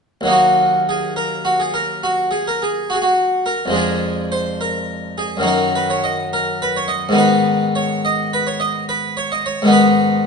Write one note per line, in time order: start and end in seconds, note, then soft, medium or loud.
0.21 3.68 D#2 soft
0.21 3.69 F#3 soft
0.25 3.70 A#3 soft
0.25 3.71 D#4 soft
0.31 0.80 F#4 medium
0.89 1.12 G#4 medium
1.16 1.45 A#4 medium
1.45 1.59 F#4 medium
1.60 1.74 G#4 medium
1.74 2.03 A#4 medium
2.03 2.28 F#4 medium
2.31 2.46 G#4 medium
2.48 2.61 A#4 medium
2.62 2.90 G#4 medium
2.90 2.96 F#4 medium
2.94 3.02 G#4 soft
3.02 3.46 F#4 medium
3.46 3.75 A#4 medium
3.66 5.37 F2 soft
3.66 5.39 F3 soft
3.70 5.40 G#3 soft
3.70 5.41 D4 soft
3.76 4.25 G#4 medium
4.32 4.61 C5 medium
4.61 5.18 A#4 soft
5.18 5.46 G#4 medium
5.37 7.08 F#2 soft
5.37 7.10 D#3 soft
5.41 7.10 F#3 soft
5.41 7.11 D#4 soft
5.47 5.71 A#4 medium
5.75 5.90 B4 medium
5.90 6.04 C#5 medium
6.04 6.28 D#5 medium
6.33 6.61 A#4 medium
6.62 6.76 B4 medium
6.76 6.90 C#5 medium
6.88 7.17 D#5 medium
7.09 9.61 G#2 soft
7.09 9.63 D#3 soft
7.09 9.64 B3 soft
7.15 9.66 D#4 soft
7.15 7.66 B4 medium
7.75 8.03 C#5 medium
8.05 8.32 D#5 medium
8.33 8.46 B4 medium
8.47 8.60 C#5 medium
8.60 8.83 D#5 medium
8.89 9.16 B4 medium
9.17 9.30 C#5 medium
9.32 9.45 D#5 medium
9.46 9.69 C#5 medium
9.62 10.27 G#2 soft
9.62 10.27 D#3 soft
9.62 10.27 B3 soft
9.68 10.27 D#4 soft
9.72 10.27 B4 medium